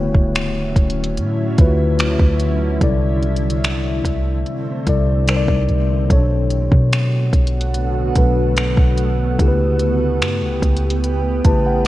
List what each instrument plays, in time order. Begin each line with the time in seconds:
Already playing: 808-style bass D1, tine electric piano D3 A3 E4 F#4 C#5, ambient pad D3 F#3 C#4 E4
0.14 808-style bass C#1, kick
0.35 finger snap, closed hi-hat
0.76 808-style bass D1, kick, closed hi-hat
0.90 closed hi-hat
1.04 closed hi-hat
1.17 808-style bass A2, closed hi-hat
1.58 808-style bass D2, tine electric piano D3 A3 E4 F4 B4, kick, closed hi-hat
1.66 tine electric piano F#4
1.99 finger snap, closed hi-hat
2.20 808-style bass D2, kick
2.40 closed hi-hat
2.81 808-style bass C2, tine electric piano C3 G3 E4 A4 D5, ambient pad A3 C4, kick, closed hi-hat
3.23 closed hi-hat
3.36 closed hi-hat
3.50 closed hi-hat
3.64 finger snap, closed hi-hat
4.04 808-style bass C2, kick, closed hi-hat
4.46 closed hi-hat
4.86 808-style bass C2, tine electric piano C3 G3 E4 A4 D5, kick, closed hi-hat
5.27 tine electric piano C3 G3 D#4 A#4 C5, finger snap, closed hi-hat
5.37 tine electric piano D5
5.48 808-style bass C2, kick
5.69 808-style bass C2, closed hi-hat
6.09 808-style bass B1, tine electric piano B2 F#3 C#4 A4 C#5, ambient pad D3 A3 B3 F#4, kick, closed hi-hat
6.17 tine electric piano D4
6.50 closed hi-hat
6.72 808-style bass B2, kick
6.93 finger snap, closed hi-hat
7.33 808-style bass B1, kick, closed hi-hat
7.47 closed hi-hat
7.61 closed hi-hat
7.75 closed hi-hat
8.15 808-style bass B1, tine electric piano B2 F#3 D4 A4 B4, kick, closed hi-hat
8.56 finger snap, closed hi-hat
8.77 808-style bass B1, kick
8.97 closed hi-hat
9.38 808-style bass C#2, tine electric piano C#3 A3 E4 G4 A4, ambient pad C#3 B3 G4, kick, closed hi-hat
9.48 tine electric piano B4
9.79 closed hi-hat
10.21 808-style bass G2, finger snap, closed hi-hat
10.42 808-style bass C#2
10.62 808-style bass C#2, kick, closed hi-hat
10.76 closed hi-hat
10.90 closed hi-hat
11.04 closed hi-hat
11.44 808-style bass A1, tine electric piano C#3 A3 E4 G4 B4 A5, kick, closed hi-hat
11.66 tine electric piano F#5